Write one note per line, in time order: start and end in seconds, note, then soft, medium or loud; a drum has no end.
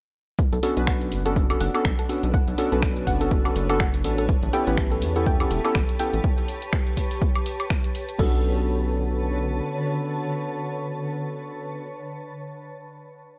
0.39 4.29 D4 medium
0.39 kick loud
0.39 shaker medium
0.53 0.59 B1 loud
0.53 0.58 A4 medium
0.53 closed hi-hat soft
0.53 shaker soft
0.63 0.75 B3 medium
0.63 0.75 C#4 medium
0.63 0.75 D4 medium
0.63 0.75 F#4 medium
0.63 0.75 A4 loud
0.63 open hi-hat loud
0.63 shaker medium
0.77 1.13 B1 medium
0.77 1.22 B3 medium
0.77 1.22 C#4 medium
0.77 1.22 D4 medium
0.77 1.22 F#4 medium
0.77 1.23 B4 medium
0.77 closed hi-hat medium
0.77 shaker soft
0.87 0.91 F#5 medium
0.87 finger snap loud
0.87 kick loud
0.87 shaker medium
1.00 8.19 B4 medium
1.00 closed hi-hat soft
1.00 shaker soft
1.11 1.55 F#1 medium
1.11 open hi-hat loud
1.11 shaker medium
1.25 1.47 B3 medium
1.25 1.47 C#4 medium
1.25 1.47 D4 medium
1.25 1.47 F#4 medium
1.25 1.31 A4 medium
1.25 1.47 A4 loud
1.25 closed hi-hat medium
1.25 shaker soft
1.35 8.19 C#5 medium
1.35 kick loud
1.35 shaker medium
1.50 1.71 B3 medium
1.50 1.71 C#4 medium
1.50 1.71 D4 medium
1.50 1.71 F#4 medium
1.50 1.71 A4 medium
1.50 closed hi-hat medium
1.50 high woodblock medium
1.50 shaker soft
1.60 1.70 F#1 loud
1.60 1.65 F#5 medium
1.60 open hi-hat loud
1.60 shaker medium
1.74 1.86 B3 medium
1.74 1.86 C#4 medium
1.74 1.86 D4 medium
1.74 1.86 F#4 medium
1.74 1.86 A4 loud
1.74 closed hi-hat medium
1.74 high woodblock medium
1.74 shaker soft
1.85 1.94 B1 medium
1.85 finger snap loud
1.85 kick loud
1.85 shaker soft
1.98 2.04 A4 medium
1.98 8.19 A5 medium
1.98 closed hi-hat medium
1.98 shaker soft
2.09 2.31 B3 medium
2.09 2.31 C#4 medium
2.09 2.31 D4 medium
2.09 2.31 F#4 medium
2.09 2.31 A4 medium
2.09 open hi-hat loud
2.09 shaker loud
2.23 2.38 B1 loud
2.23 closed hi-hat medium
2.23 shaker soft
2.33 2.38 F#5 medium
2.33 kick loud
2.33 shaker medium
2.48 2.54 B1 loud
2.48 closed hi-hat soft
2.48 shaker soft
2.58 2.70 B3 medium
2.58 2.70 C#4 medium
2.58 2.70 D4 medium
2.58 2.70 F#4 medium
2.58 2.70 A4 loud
2.58 open hi-hat loud
2.58 shaker loud
2.72 3.08 B1 medium
2.72 3.17 B3 medium
2.72 3.17 C#4 medium
2.72 3.18 D4 medium
2.72 3.18 F#4 medium
2.72 2.77 A4 medium
2.72 3.18 B4 loud
2.72 closed hi-hat medium
2.72 shaker soft
2.82 finger snap loud
2.82 kick loud
2.82 shaker medium
2.96 closed hi-hat soft
2.96 shaker soft
3.07 3.50 F#1 medium
3.07 3.11 F#5 medium
3.07 kick medium
3.07 open hi-hat loud
3.07 shaker loud
3.21 3.42 B3 medium
3.21 3.42 C#4 medium
3.21 3.42 D4 medium
3.21 3.42 F#4 medium
3.21 3.42 A4 loud
3.21 open hi-hat medium
3.21 shaker soft
3.31 kick loud
3.31 shaker medium
3.45 3.66 B3 medium
3.45 3.66 C#4 medium
3.45 3.66 D4 medium
3.45 3.66 F#4 medium
3.45 3.50 A4 medium
3.45 3.66 A4 medium
3.45 closed hi-hat medium
3.45 high woodblock medium
3.45 shaker soft
3.56 4.06 F#1 loud
3.56 open hi-hat loud
3.56 shaker medium
3.69 3.81 B3 loud
3.69 3.81 C#4 medium
3.69 3.81 D4 medium
3.69 3.82 F#4 medium
3.69 3.82 A4 loud
3.69 closed hi-hat medium
3.69 high woodblock medium
3.69 shaker soft
3.80 3.84 F#5 medium
3.80 finger snap loud
3.80 kick loud
3.80 shaker medium
3.94 closed hi-hat medium
3.94 shaker soft
4.04 4.35 A1 medium
4.04 4.26 B3 medium
4.04 4.26 C#4 medium
4.04 4.26 D4 medium
4.04 4.26 F#4 medium
4.04 4.26 A4 medium
4.04 open hi-hat loud
4.04 shaker loud
4.18 4.24 A4 medium
4.18 closed hi-hat medium
4.18 shaker soft
4.29 8.19 G4 medium
4.29 kick loud
4.29 shaker medium
4.43 4.49 A1 loud
4.43 closed hi-hat soft
4.43 shaker soft
4.53 4.65 B3 medium
4.53 4.65 C#4 medium
4.53 4.65 E4 medium
4.53 4.65 G4 medium
4.53 4.65 A4 loud
4.53 4.57 G5 medium
4.53 open hi-hat loud
4.53 shaker loud
4.67 5.04 A1 medium
4.67 5.12 B3 medium
4.67 5.13 C#4 medium
4.67 5.13 E4 medium
4.67 5.13 G4 medium
4.67 5.13 B4 loud
4.67 closed hi-hat medium
4.67 shaker soft
4.78 finger snap loud
4.78 kick loud
4.78 shaker medium
4.91 4.97 A4 medium
4.91 closed hi-hat soft
4.91 shaker soft
5.02 5.45 E2 loud
5.02 open hi-hat loud
5.02 shaker medium
5.16 5.37 B3 medium
5.16 5.37 C#4 medium
5.16 5.37 E4 medium
5.16 5.37 G4 medium
5.16 5.37 A4 medium
5.16 closed hi-hat medium
5.16 shaker soft
5.26 5.30 G5 medium
5.26 kick loud
5.26 shaker medium
5.40 5.61 B3 medium
5.40 5.61 C#4 medium
5.40 5.61 E4 medium
5.40 5.61 G4 medium
5.40 5.62 A4 medium
5.40 closed hi-hat medium
5.40 high woodblock medium
5.40 shaker soft
5.51 5.60 E1 loud
5.51 open hi-hat loud
5.51 shaker medium
5.64 5.76 B3 loud
5.64 5.77 C#4 medium
5.64 5.77 E4 medium
5.64 5.77 G4 medium
5.64 5.70 A4 medium
5.64 5.77 A4 loud
5.64 closed hi-hat medium
5.64 high woodblock medium
5.64 shaker soft
5.75 5.84 A1 medium
5.75 finger snap loud
5.75 kick loud
5.75 shaker medium
5.89 closed hi-hat soft
5.89 shaker soft
5.99 6.21 B3 medium
5.99 6.21 C#4 medium
5.99 6.21 E4 medium
5.99 6.22 G4 medium
5.99 6.22 A4 medium
5.99 6.04 G5 medium
5.99 open hi-hat loud
5.99 shaker medium
6.13 6.20 A1 loud
6.13 closed hi-hat medium
6.13 shaker soft
6.24 kick loud
6.38 closed hi-hat soft
6.48 open hi-hat loud
6.62 closed hi-hat medium
6.73 finger snap loud
6.73 kick loud
6.87 closed hi-hat soft
6.97 kick medium
6.97 open hi-hat loud
7.11 open hi-hat medium
7.22 kick loud
7.36 closed hi-hat medium
7.36 high woodblock medium
7.46 open hi-hat loud
7.60 closed hi-hat medium
7.60 high woodblock medium
7.70 finger snap loud
7.70 kick loud
7.84 closed hi-hat medium
7.95 open hi-hat loud
8.09 closed hi-hat medium
8.18 9.62 B1 loud
8.18 11.88 D3 medium
8.18 11.87 B3 medium
8.18 11.87 C#4 medium
8.18 11.88 D4 medium
8.18 11.88 F#4 medium
8.18 8.42 A4 loud
8.18 11.89 A4 loud
8.18 kick loud
8.18 crash medium
8.27 11.96 B4 medium
8.35 12.04 C#5 medium
8.41 12.10 A5 medium